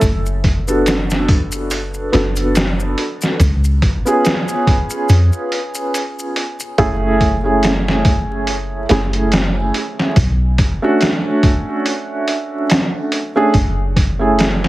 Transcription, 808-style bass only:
0.02 F#1
2.14 F#1
3.40 C#2
3.83 G#1
5.09 F2
6.78 F#1
8.91 F#1
10.17 B1
10.59 F#1
13.54 F#1

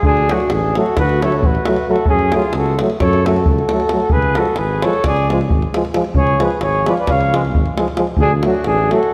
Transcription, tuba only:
0.03 D2
0.51 A1
0.97 D2
1.44 A1
2.08 F#2
2.54 C#2
3.02 F#2
3.48 C#2
4.11 C#2
4.58 G#1
5.05 C#2
5.52 G#1
6.14 C#2
6.62 G#1
7.08 C#2
7.54 G#1
8.18 D2
8.66 A1

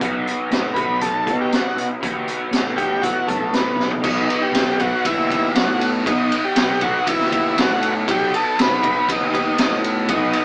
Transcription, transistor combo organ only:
0.74 B4
1.01 A4
1.41 G4
1.55 F#4
2.76 G4
3.02 F#4
3.27 A3
3.54 B3
4.03 D#4
4.42 G4
4.80 F#4
5.06 E4
5.55 F#4
6.07 D#4
6.44 G4
6.82 F#4
7.08 E4
7.61 F#4
8.11 G4
8.35 A4
8.61 B4
9.12 D#4
10.10 D#4

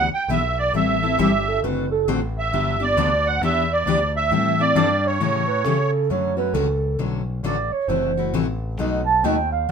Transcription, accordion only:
0.14 G5
0.31 E5
0.59 D5
0.76 E5
2.39 E5
2.82 D5
3.27 F#5
3.44 E5
3.72 D5
4.16 E5
4.60 D5
5.06 C#5

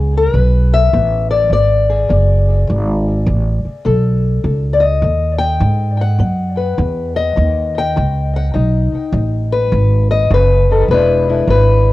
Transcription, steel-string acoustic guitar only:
Already playing: B3 G#4
0.17 A#4
0.35 E3 B4
0.74 E5
0.94 B3
1.31 D5
1.52 E3 D5
1.90 G#4
2.09 B3
2.67 E3
3.26 B3
3.85 B3 A4
4.44 D#4
4.73 D5
4.80 D#5
5.04 F#3
5.38 G5
5.61 D#4
6.01 F#5
6.20 B3
6.57 B4
6.78 D#4
7.16 D#5
7.36 F#3
7.78 G5
7.96 D#4
8.36 F#5
8.54 B2 D#4
9.13 F#3
9.52 B4
9.73 F#3
10.11 D#5
10.31 C#3 B4
10.71 D#3 A4
10.91 E3 G#3 D4 E4 B4
11.29 E4
11.49 G#3 B4

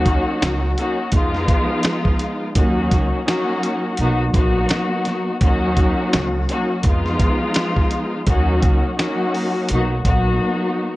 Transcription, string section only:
Already playing: F#3 A#3 C#4 D#4 F#4
0.77 F#3 A#3 C#4 D#4 F#4
1.14 F3 G#3 B3 D#4 F4
2.55 F#3 A#3 C#4 D#4 F#4
3.25 F#3 A#3 C#4 D#4 F#4
4.00 F#3 A#3 B3 D#4 F#4
4.34 F#3 A#3 B3 D#4 F#4
5.41 F#3 A#3 C#4 D#4 F#4
6.49 F#3 A#3 C#4 D#4 F#4
6.86 F3 G#3 B3 D#4 F4
8.27 F#3 A#3 C#4 D#4 F#4
8.97 F#3 A#3 C#4 D#4 F#4
9.72 F#3 A#3 B3 D#4 F#4
10.06 F#3 A#3 B3 D#4 F#4

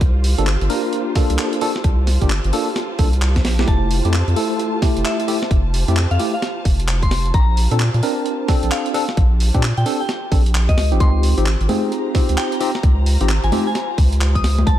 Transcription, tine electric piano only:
0.38 A#3 D4 F4 A4
0.70 A#3 D4 F4 A#4
1.16 A#3 D4 F4 A4
1.62 A#3 D4 F4 A4
2.22 A#3 D4 F4 G4
2.53 A#3 D4 F4 A4
2.99 A#3 D4 F4 A4
3.59 A3 E4 G4
4.05 A3 E4 G4
4.36 A3 E4 A4
4.82 A3 E4 G4
5.28 A3 E4 G4
5.88 A3 E4 G4
6.20 A3 E4 G4
7.71 C4 D4 A4
8.03 C4 D4 A#4
8.49 C4 D4 A4
8.94 C4 D4 A4
9.55 C4 D4 G4
9.86 C4 D4 A4
10.32 C4 D4 A4
10.92 C4 D#4 F4 G4
11.38 C4 D#4 F4 G4
11.69 C4 D#4 F4 G#4
12.15 C4 D#4 F4 G4
12.61 C4 D#4 F4 G4
13.21 C4 D#4 F4 G4
13.52 C4 D#4 F4 G4

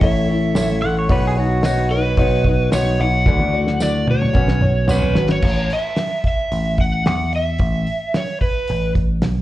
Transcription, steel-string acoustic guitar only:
0.02 A3 E4 A4 C#5
0.28 E4 A4 C#5
0.56 A3 E4 A4 C#5
0.82 E4 A4 C#5
1.09 B3 D#4 F#4 C#5
1.37 F#4 C#5
1.41 D#4
1.65 B3 D#4 F#4 C#5
1.92 D#4 F#4 C#5
2.18 B3 D#4 F#4 C#5
2.46 D#4 F#4 C#5
2.71 B3 D#4 F#4 C#5
2.99 D#4 F#4 C#5
3.26 D3 E3 A3 D4 F#4 D5
3.54 A3 D4 F#4 D5
3.80 A3 D4 F#4 D5
4.07 A3 D4 F#4 D5
4.33 B3 C#4 F#4 C#5
4.62 C#4 F#4 C#5
4.90 B3 C#4 F#4 C#5
5.14 C#4 F#4 C#5

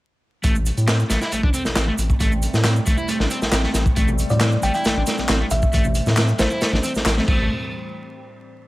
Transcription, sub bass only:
0.44 A1
0.77 A2
1.10 A1
1.32 A1
1.43 A1
1.66 A1
1.76 A1
1.98 A1
2.20 A1
2.53 A2
2.87 A1
3.19 A1
3.41 A1
3.52 A1
3.74 A1
3.97 A1
4.30 A2
4.62 A1
4.85 A1
4.96 A1
5.18 A1
5.29 A1
5.50 A1
5.74 A1
6.06 A2
6.39 A1
6.72 A1
6.95 A1
7.05 A1
7.28 A1

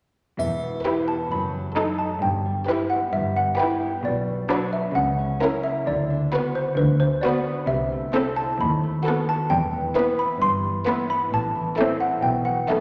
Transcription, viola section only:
0.86 E4
1.77 D#4
2.68 E4
3.60 E4
4.50 D4
5.42 C#4
6.33 B3
7.25 B3
8.15 C4
9.06 B3
9.96 B3
10.87 B3
11.79 C4
12.70 B3

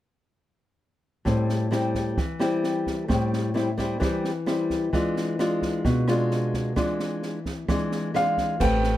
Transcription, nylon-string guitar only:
1.25 A2 G3 C4 E4
1.71 G3 C4 E4
2.18 E3
2.39 G3 C4 E4
3.08 A2 G3 C4 E4
3.54 G3 C4 E4
3.78 G3 C4 E4
4.00 E3 G3 C4 E4
4.46 G3 C4 E4
4.93 E3 G#3 D4 F4
5.39 G#3 D4 F4
5.85 B2
6.08 G#3 D4 F4
6.76 E3 G#3 D4 F4
7.68 E3 G#3 D4 F4
8.14 G#3 D4 F4
8.60 A3 C4 G4 B4

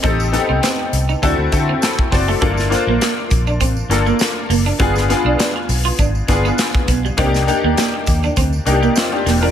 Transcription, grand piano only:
0.02 C4 D#4 G4 A4
0.32 B3 D#4 G4 A4
0.38 C4
1.22 C4 E4 F#4 A4
1.52 C4 E4 F#4 A4
1.82 E4 A4 A5
2.11 F#4 C5 D5
2.27 E4 A4
2.41 A#3 D4 F4 A4
2.70 A#3 D4 F4 C5
3.90 A#3 D4 F4 A4
4.79 B3 D4 F4 G#4
5.09 B3 D4 F4 G#4
6.28 B3 D4 F4 G#4
7.17 A#3 D4 D#4 G4
7.47 A#3 D4 D#4 G4
8.65 A#3 D4 D#4 G4
8.96 C4 F4
9.12 D4 G4
9.41 F4 A#4

